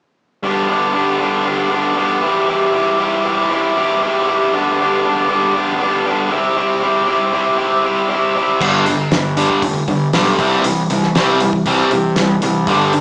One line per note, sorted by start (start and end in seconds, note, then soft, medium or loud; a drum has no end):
0.43 0.67 G2 medium
0.43 0.68 D3 medium
0.43 0.69 G3 medium
0.43 0.69 B3 medium
0.43 0.69 D4 medium
0.43 0.70 G4 medium
0.68 0.92 G2 medium
0.68 0.92 D3 medium
0.68 0.94 G3 medium
0.68 0.93 B3 medium
0.68 0.94 D4 medium
0.68 0.95 G4 medium
0.93 1.19 G2 medium
0.93 1.19 D3 medium
0.93 1.20 G3 medium
0.93 1.20 B3 medium
0.93 1.20 D4 medium
0.93 1.21 G4 medium
1.20 1.44 G2 medium
1.20 1.44 D3 medium
1.20 1.46 G3 medium
1.20 1.45 B3 medium
1.20 1.45 D4 medium
1.20 1.47 G4 medium
1.45 1.69 G2 medium
1.45 1.69 D3 medium
1.45 1.71 G3 medium
1.45 1.70 B3 medium
1.45 1.71 D4 medium
1.45 1.72 G4 medium
1.70 1.95 G2 medium
1.70 1.96 D3 medium
1.70 1.97 G3 medium
1.70 1.96 B3 medium
1.70 1.97 D4 medium
1.70 1.98 G4 medium
1.96 2.21 G2 medium
1.96 2.21 D3 medium
1.96 2.22 G3 medium
1.96 2.21 B3 medium
1.96 2.21 D4 medium
1.96 2.23 G4 medium
2.22 2.47 C3 medium
2.22 2.47 E3 medium
2.22 2.48 G3 medium
2.22 2.48 E4 medium
2.22 2.49 G4 medium
2.48 2.72 C3 medium
2.48 2.73 E3 medium
2.48 2.74 G3 medium
2.48 2.74 E4 medium
2.48 2.75 G4 medium
2.73 2.98 C3 medium
2.73 2.98 E3 medium
2.73 3.00 G3 medium
2.73 2.99 E4 medium
2.73 3.00 G4 medium
2.99 3.23 C3 medium
2.99 3.23 E3 medium
2.99 3.25 G3 medium
2.99 3.25 E4 medium
2.99 3.26 G4 medium
3.24 3.49 C3 medium
3.24 3.50 E3 medium
3.24 3.51 G3 medium
3.24 3.51 E4 medium
3.24 3.52 G4 medium
3.51 3.75 C3 medium
3.51 3.76 E3 medium
3.51 3.77 G3 medium
3.51 3.76 E4 medium
3.51 3.78 G4 medium
3.77 4.00 C3 medium
3.77 4.01 E3 medium
3.77 4.02 G3 medium
3.77 4.02 E4 medium
3.77 4.03 G4 medium
4.01 4.26 C3 medium
4.01 4.27 E3 medium
4.01 4.28 G3 medium
4.01 4.28 E4 medium
4.01 4.29 G4 medium
4.27 4.51 C3 medium
4.27 4.52 E3 medium
4.27 4.54 G3 medium
4.27 4.52 E4 medium
4.27 4.55 G4 medium
4.53 4.78 G2 medium
4.53 4.78 D3 medium
4.53 4.79 G3 medium
4.53 4.79 B3 medium
4.53 4.79 D4 medium
4.53 4.80 G4 medium
4.79 5.03 G2 medium
4.79 5.03 D3 medium
4.79 5.05 G3 medium
4.79 5.04 B3 medium
4.79 5.05 D4 medium
4.79 5.06 G4 medium
5.04 5.28 G2 medium
5.04 5.29 D3 medium
5.04 5.30 G3 medium
5.04 5.29 B3 medium
5.04 5.30 D4 medium
5.04 5.31 G4 medium
5.29 5.53 G2 medium
5.29 5.54 D3 medium
5.29 5.55 G3 medium
5.29 5.54 B3 medium
5.29 5.54 D4 medium
5.29 5.56 G4 medium
5.54 5.78 G2 medium
5.54 5.78 D3 medium
5.54 5.80 G3 medium
5.54 5.79 B3 medium
5.54 5.80 D4 medium
5.54 5.81 G4 medium
5.79 6.04 G2 medium
5.79 6.05 D3 medium
5.79 6.06 G3 medium
5.79 6.05 B3 medium
5.79 6.06 D4 medium
5.79 6.07 G4 medium
6.05 6.29 G2 medium
6.05 6.30 D3 medium
6.05 6.31 G3 medium
6.05 6.30 B3 medium
6.05 6.30 D4 medium
6.05 6.32 G4 medium
6.31 6.55 C3 medium
6.31 6.56 G3 medium
6.31 6.56 C4 medium
6.31 6.57 E4 medium
6.31 6.57 G4 medium
6.56 6.80 C3 medium
6.56 6.81 G3 medium
6.56 6.81 C4 medium
6.56 6.82 E4 medium
6.56 6.82 G4 medium
6.81 7.05 C3 medium
6.81 7.06 G3 medium
6.81 7.06 C4 medium
6.81 7.07 E4 medium
6.81 7.07 G4 medium
7.07 7.31 C3 medium
7.07 7.31 G3 medium
7.07 7.32 C4 medium
7.07 7.32 E4 medium
7.07 7.33 G4 medium
7.32 7.56 C3 medium
7.32 7.57 G3 medium
7.32 7.57 C4 medium
7.32 7.57 E4 medium
7.32 7.58 G4 medium
7.57 7.82 C3 medium
7.57 7.83 G3 medium
7.57 7.83 C4 medium
7.57 7.84 E4 medium
7.57 7.84 G4 medium
7.83 8.08 C3 medium
7.83 8.08 G3 medium
7.83 8.08 C4 medium
7.83 8.09 E4 medium
7.83 8.09 G4 medium
8.09 8.34 C3 medium
8.09 8.35 G3 medium
8.09 8.35 C4 medium
8.09 8.35 E4 medium
8.09 8.36 G4 medium
8.35 8.59 C3 medium
8.35 8.59 G3 medium
8.35 8.60 C4 medium
8.35 8.59 E4 medium
8.35 8.60 G4 medium
8.60 8.94 G1 medium
8.60 8.84 G2 medium
8.60 8.85 D3 medium
8.60 8.85 G3 medium
8.60 kick loud
8.60 crash medium
8.86 9.09 G2 medium
8.86 9.09 D3 medium
8.86 open hi-hat soft
9.11 9.44 G1 medium
9.11 9.35 G2 medium
9.11 9.35 D3 medium
9.11 snare loud
9.11 open hi-hat medium
9.37 9.61 G2 medium
9.37 9.61 D3 medium
9.37 9.61 G3 medium
9.37 open hi-hat soft
9.50 kick medium
9.62 9.79 F1 medium
9.62 9.85 G2 medium
9.62 9.85 D3 medium
9.62 kick medium
9.62 open hi-hat medium
9.88 10.04 G1 medium
9.88 10.11 G2 medium
9.88 10.11 D3 medium
9.88 kick medium
9.88 open hi-hat medium
10.13 10.30 B1 medium
10.13 10.37 G2 medium
10.13 10.37 D3 medium
10.13 10.38 G3 medium
10.13 snare medium
10.13 open hi-hat medium
10.39 10.55 C2 medium
10.39 10.63 C3 medium
10.39 10.63 E3 medium
10.39 10.63 G3 medium
10.39 10.63 C4 medium
10.39 kick loud
10.39 open hi-hat soft
10.64 10.81 C2 medium
10.64 10.87 C3 medium
10.64 10.87 E3 medium
10.64 10.87 G3 medium
10.64 open hi-hat medium
10.90 11.06 C2 medium
10.90 11.13 C3 medium
10.90 11.13 E3 medium
10.90 11.13 G3 medium
10.90 open hi-hat medium
11.03 snare soft
11.15 11.48 C2 medium
11.15 11.39 C3 medium
11.15 11.39 E3 medium
11.15 11.40 G3 medium
11.15 11.39 C4 medium
11.15 snare medium
11.15 open hi-hat medium
11.40 11.64 C3 medium
11.40 11.64 E3 medium
11.40 11.64 G3 medium
11.40 open hi-hat soft
11.53 kick medium
11.66 11.82 C2 medium
11.66 11.90 C3 medium
11.66 11.90 E3 medium
11.66 11.90 G3 medium
11.66 11.90 C4 medium
11.66 kick medium
11.66 open hi-hat medium
11.91 12.08 C3 medium
11.91 12.15 C3 medium
11.91 12.15 E3 medium
11.91 12.15 G3 medium
11.91 open hi-hat soft
12.16 12.33 C2 medium
12.16 12.40 C3 medium
12.16 12.40 E3 medium
12.16 12.40 G3 medium
12.16 snare medium
12.16 open hi-hat medium
12.42 12.68 C2 medium
12.42 12.65 C3 medium
12.42 12.65 E3 medium
12.42 12.65 G3 medium
12.42 open hi-hat soft
12.67 13.00 G1 medium
12.67 12.91 G2 medium
12.67 12.91 D3 medium
12.67 12.92 G3 loud
12.67 kick loud
12.67 open hi-hat medium
12.93 13.01 G2 medium
12.93 13.01 D3 medium
12.93 open hi-hat soft